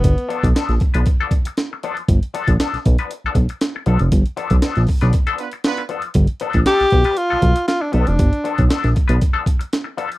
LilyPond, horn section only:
\new Staff \with { instrumentName = "Horn section" } { \time 4/4 \key g \mixolydian \tempo 4 = 118 r1 | r1 | r2 r8 <b d' f' b'>16 r16 <b d' f' b'>8 r8 | r1 |
r1 | }